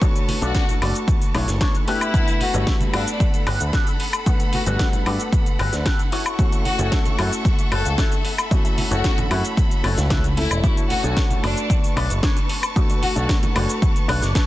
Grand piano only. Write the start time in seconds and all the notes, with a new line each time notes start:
0.01 A3 D4 F#4 C#5
0.41 A3 D4 A4
0.81 A3 D4 F#4
1.34 A3 D4 E4
1.87 A3 B3 D4 G4
2.13 A3 B3 D4 F#5
2.54 G3 A3 B3 D4
2.93 A3 B3 D4 F#5
4.26 A3 B3 D4 F#5
4.66 G3 A3 B3 D4
5.05 A3 B3 D4 F#5
6.38 A3 C#4 E4 F#4
6.78 A3 C#4 E4 A4
7.18 A3 C#4 E4 F#4
8.51 A3 C#4 E4 F#4
8.91 A3 C#4 E4 A4
9.31 A3 C#4 E4 F#4
9.84 A3 C#4 E4 F#4
10.37 A3 C#4 E4 A4
10.63 A3 C#4 D4 F#4
11.03 A3 D4 A4 C#5
11.42 A3 D4 F#4
12.75 A3 D4 F#4
13.15 A3 D4 A4
13.55 A3 D4 F#4